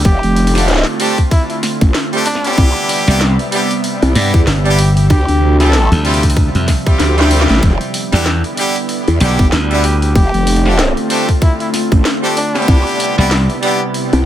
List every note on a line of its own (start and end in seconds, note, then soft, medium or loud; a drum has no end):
0.00 2.54 D3 medium
0.05 0.21 F1 medium
0.05 2.55 A3 medium
0.05 2.55 C4 medium
0.05 2.55 F4 medium
0.05 0.68 G4 loud
0.05 kick loud
0.05 open hi-hat soft
0.23 0.84 F1 loud
0.23 open hi-hat soft
0.36 open hi-hat soft
0.47 open hi-hat soft
0.55 0.67 G3 medium
0.55 0.67 A3 medium
0.55 0.67 C4 medium
0.55 0.67 D4 medium
0.55 0.67 G4 loud
0.55 snare medium
0.55 open hi-hat soft
0.58 open hi-hat medium
0.68 snare medium
0.68 open hi-hat soft
0.71 snare medium
0.74 snare medium
0.77 snare medium
0.83 snare loud
0.83 open hi-hat soft
1.00 1.17 G3 loud
1.00 1.17 A3 loud
1.00 1.17 C4 medium
1.00 1.17 D4 medium
1.00 1.17 G4 loud
1.00 open hi-hat medium
1.18 kick medium
1.18 open hi-hat soft
1.31 1.43 E4 medium
1.31 kick loud
1.31 open hi-hat soft
1.50 1.58 E4 medium
1.50 open hi-hat soft
1.63 snare medium
1.63 open hi-hat medium
1.81 1.93 A1 loud
1.81 kick loud
1.81 open hi-hat soft
1.94 snare loud
1.94 open hi-hat soft
2.13 2.25 G3 loud
2.13 2.25 A3 loud
2.13 2.25 C4 medium
2.13 2.25 D4 medium
2.13 2.25 G4 loud
2.13 open hi-hat soft
2.26 2.65 D4 loud
2.26 open hi-hat medium
2.35 snare medium
2.44 3.03 G3 loud
2.44 3.03 B3 loud
2.44 3.03 D4 medium
2.44 3.03 E4 medium
2.44 3.03 G4 loud
2.44 open hi-hat soft
2.47 open hi-hat soft
2.53 open hi-hat soft
2.58 2.73 C2 medium
2.58 5.08 C3 medium
2.58 5.08 G3 medium
2.58 5.08 B3 medium
2.58 7.59 E5 medium
2.58 kick loud
2.58 open hi-hat soft
2.76 open hi-hat soft
2.89 open hi-hat medium
3.07 3.36 C2 loud
3.07 3.20 G3 loud
3.07 3.20 B3 loud
3.07 3.20 D4 medium
3.07 3.20 E4 medium
3.07 3.20 G4 loud
3.07 snare medium
3.07 open hi-hat soft
3.21 snare loud
3.21 open hi-hat soft
3.39 open hi-hat soft
3.52 3.70 G3 loud
3.52 3.70 B3 loud
3.52 3.69 D4 medium
3.52 3.69 E4 medium
3.52 3.70 G4 loud
3.52 open hi-hat medium
3.71 open hi-hat soft
3.84 open hi-hat soft
4.02 4.14 C2 loud
4.02 open hi-hat soft
4.15 4.31 G2 loud
4.15 4.40 G3 medium
4.15 4.40 B3 medium
4.15 4.40 D4 medium
4.15 4.40 E4 medium
4.15 4.40 G4 loud
4.15 snare medium
4.15 open hi-hat medium
4.34 4.45 E2 loud
4.34 kick loud
4.34 open hi-hat soft
4.47 5.08 G1 loud
4.47 snare loud
4.47 open hi-hat soft
4.65 4.78 G3 loud
4.65 4.78 B3 loud
4.65 4.78 D4 medium
4.65 4.78 E4 medium
4.65 4.78 G4 loud
4.65 open hi-hat soft
4.79 4.90 G4 medium
4.79 open hi-hat medium
4.97 5.06 G4 medium
4.97 open hi-hat soft
5.10 5.26 D2 medium
5.10 7.61 C3 medium
5.10 7.60 F3 medium
5.10 10.12 G3 medium
5.10 5.59 G4 loud
5.10 kick loud
5.10 open hi-hat soft
5.28 5.89 D2 loud
5.28 open hi-hat soft
5.60 5.72 G3 medium
5.60 5.72 C4 medium
5.60 5.72 E4 medium
5.60 5.72 F4 medium
5.60 5.72 G4 loud
5.60 6.05 A4 loud
5.60 snare medium
5.60 open hi-hat soft
5.73 snare loud
5.73 open hi-hat soft
5.92 6.52 D2 loud
5.92 open hi-hat soft
6.04 6.22 G3 loud
6.04 6.22 C4 loud
6.04 6.22 E4 medium
6.04 6.22 F4 loud
6.04 6.22 G4 loud
6.04 open hi-hat soft
6.14 open hi-hat soft
6.23 kick medium
6.23 open hi-hat medium
6.30 open hi-hat medium
6.37 kick loud
6.37 open hi-hat soft
6.55 6.66 F2 medium
6.55 open hi-hat soft
6.68 kick medium
6.68 snare soft
6.68 snare medium
6.68 open hi-hat medium
6.86 7.14 G3 medium
6.86 7.14 C4 medium
6.86 7.14 E4 medium
6.86 7.14 F4 medium
6.86 7.14 G4 medium
6.86 kick loud
6.86 open hi-hat soft
7.00 7.47 D2 loud
7.00 snare medium
7.00 open hi-hat soft
7.18 7.61 G3 loud
7.18 7.61 C4 loud
7.18 7.61 E4 medium
7.18 7.61 F4 medium
7.18 7.61 G4 loud
7.18 snare medium
7.18 open hi-hat soft
7.31 open hi-hat medium
7.41 snare medium
7.48 7.61 A1 loud
7.48 snare medium
7.48 open hi-hat soft
7.51 snare medium
7.55 snare medium
7.58 snare soft
7.62 7.79 E1 medium
7.62 12.64 D3 medium
7.62 10.13 B3 medium
7.62 10.13 E4 medium
7.62 kick loud
7.62 snare soft
7.62 open hi-hat soft
7.65 snare soft
7.70 snare soft
7.81 open hi-hat soft
7.94 open hi-hat medium
8.12 8.42 E2 loud
8.12 8.25 G3 loud
8.12 8.25 B3 loud
8.12 8.25 D4 medium
8.12 8.25 E4 medium
8.12 8.25 G4 loud
8.12 snare medium
8.12 open hi-hat soft
8.26 snare loud
8.26 open hi-hat soft
8.44 open hi-hat soft
8.57 8.75 G3 loud
8.57 8.75 B3 loud
8.57 8.75 D4 medium
8.57 8.75 E4 medium
8.57 8.75 G4 loud
8.57 open hi-hat medium
8.76 open hi-hat soft
8.89 open hi-hat soft
9.08 9.19 E2 loud
9.08 open hi-hat soft
9.20 9.36 B1 loud
9.20 9.46 G3 medium
9.20 9.46 B3 medium
9.20 9.46 D4 medium
9.20 9.46 E4 medium
9.20 9.46 G4 loud
9.20 snare medium
9.20 open hi-hat medium
9.39 9.50 G1 loud
9.39 kick loud
9.39 open hi-hat soft
9.52 10.14 D2 medium
9.52 snare loud
9.52 open hi-hat soft
9.71 9.83 G3 loud
9.71 9.83 B3 loud
9.71 9.83 D4 medium
9.71 9.83 E4 medium
9.71 9.83 G4 loud
9.71 open hi-hat soft
9.84 9.96 G4 medium
9.84 open hi-hat medium
10.02 10.11 G4 medium
10.02 open hi-hat soft
10.15 10.31 F1 medium
10.15 12.66 A3 medium
10.15 12.66 C4 medium
10.15 12.66 F4 medium
10.15 10.79 G4 loud
10.15 kick loud
10.15 open hi-hat soft
10.34 10.94 F1 loud
10.34 open hi-hat soft
10.47 open hi-hat medium
10.56 open hi-hat soft
10.65 10.78 G3 medium
10.65 10.78 A3 medium
10.65 10.78 C4 medium
10.65 10.78 D4 medium
10.65 10.78 G4 loud
10.65 snare medium
10.79 snare loud
10.79 open hi-hat soft
10.97 open hi-hat soft
11.10 11.27 G3 loud
11.10 11.27 A3 loud
11.10 11.27 C4 medium
11.10 11.27 D4 medium
11.10 11.27 G4 loud
11.10 open hi-hat medium
11.29 kick medium
11.29 open hi-hat soft
11.42 11.54 E4 medium
11.42 kick loud
11.42 open hi-hat soft
11.60 11.69 E4 medium
11.60 open hi-hat soft
11.74 snare medium
11.74 open hi-hat medium
11.92 12.03 A1 loud
11.92 kick loud
11.92 open hi-hat soft
12.05 snare loud
12.05 open hi-hat soft
12.23 12.36 G3 loud
12.23 12.35 A3 loud
12.23 12.36 C4 medium
12.23 12.36 D4 medium
12.23 12.36 G4 loud
12.23 open hi-hat soft
12.37 12.76 D4 loud
12.37 open hi-hat medium
12.55 13.14 G3 loud
12.55 13.14 B3 loud
12.55 13.14 D4 medium
12.55 13.14 E4 medium
12.55 13.14 G4 loud
12.55 snare medium
12.55 open hi-hat soft
12.62 open hi-hat soft
12.68 12.84 C2 medium
12.68 14.26 C3 medium
12.68 14.26 G3 medium
12.68 14.26 B3 medium
12.68 14.26 E4 medium
12.68 kick loud
12.68 open hi-hat soft
12.78 open hi-hat soft
12.87 open hi-hat soft
12.89 open hi-hat soft
12.95 open hi-hat soft
13.00 open hi-hat medium
13.10 open hi-hat soft
13.18 13.47 C2 loud
13.18 13.30 G3 loud
13.18 13.30 B3 loud
13.18 13.30 D4 medium
13.18 13.30 E4 medium
13.18 13.30 G4 loud
13.18 snare medium
13.31 snare loud
13.31 open hi-hat soft
13.50 open hi-hat soft
13.63 13.80 G3 loud
13.63 13.80 B3 loud
13.63 13.80 D4 medium
13.63 13.80 E4 medium
13.63 13.80 G4 loud
13.63 open hi-hat medium
13.94 open hi-hat soft
14.13 14.24 C2 loud
14.13 open hi-hat soft